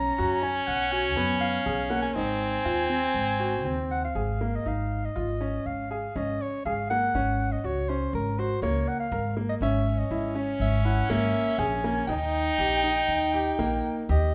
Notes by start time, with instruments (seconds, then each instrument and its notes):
Already playing: upright bass B1, grand piano C#4, french horn C#4, soprano saxophone A#5
0.18 upright bass F#2, grand piano F#4
0.42 grand piano C#4, soprano saxophone G#5
0.67 upright bass B1, soprano saxophone F#5
0.92 grand piano F#4, soprano saxophone G#5
1.16 upright bass F#2, grand piano B3, soprano saxophone G#5
1.41 soprano saxophone F5
1.66 upright bass B1, grand piano G#4
1.90 grand piano A#3, soprano saxophone F#5
2.02 soprano saxophone G#5
2.15 upright bass G#1, french horn C4, grand piano D#4
2.65 upright bass D#2, grand piano F4
2.90 grand piano C4
3.14 upright bass G#1
3.40 grand piano F#4
3.64 upright bass D#2, grand piano C4
3.91 soprano saxophone F#5
4.04 soprano saxophone F5
4.15 upright bass G#1, grand piano G#4
4.41 grand piano A#3
4.55 soprano saxophone D#5
4.65 upright bass G#1, grand piano D#4, soprano saxophone F5
5.05 soprano saxophone D#5
5.16 upright bass G#1, grand piano F4
5.41 grand piano C#4
5.66 upright bass G#1, soprano saxophone F5
5.91 grand piano G#4, soprano saxophone F5
6.16 upright bass G#1, grand piano C#4, soprano saxophone D#5
6.41 soprano saxophone C#5
6.65 upright bass G#1, grand piano G#4, soprano saxophone F5
6.90 grand piano A#3, soprano saxophone F#5
7.14 upright bass G#1, grand piano C#4
7.52 soprano saxophone D#5
7.64 upright bass C#2, grand piano F#4, soprano saxophone C#5
7.89 grand piano C#4, soprano saxophone C5
8.13 upright bass G#1, soprano saxophone A#4
8.39 grand piano F#4, soprano saxophone C5
8.62 upright bass C#2, grand piano A#3, soprano saxophone C#5
8.88 soprano saxophone F#5
9.00 soprano saxophone F5
9.12 upright bass G#1, grand piano A#4
9.37 grand piano A#3
9.49 soprano saxophone D#5
9.61 upright bass G#1, grand piano C#4, french horn C#4, soprano saxophone E5
9.98 soprano saxophone D#5
10.11 upright bass G#1, grand piano E4
10.35 grand piano C#4
10.60 upright bass G#1, soprano saxophone E5
10.85 grand piano E4, soprano saxophone F#5
11.10 upright bass G#1, grand piano A#3, soprano saxophone E5
11.58 upright bass A#1, grand piano G#4, soprano saxophone G#5
11.84 grand piano A#3
12.07 upright bass D#2, french horn D#4, grand piano D#4, soprano saxophone G5
12.58 upright bass A#1, grand piano G4
12.84 grand piano D#4
13.08 upright bass D#2
13.34 grand piano G4
13.59 upright bass A#1, grand piano A#3
14.09 upright bass D#2, grand piano G4, soprano saxophone D#5